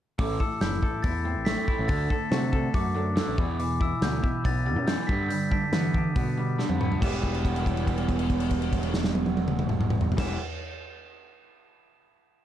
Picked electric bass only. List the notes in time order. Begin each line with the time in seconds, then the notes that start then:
0.19 A1
0.61 F#1
1.04 E2
1.36 A1
1.79 A1
1.89 D2
2.31 C3
2.74 F#2
3.27 A1
3.38 E2
4.01 D2
4.45 B1
4.76 F#2
5.09 G2
5.72 E3
6.16 B2
6.69 F2
7.02 E1
10.18 E1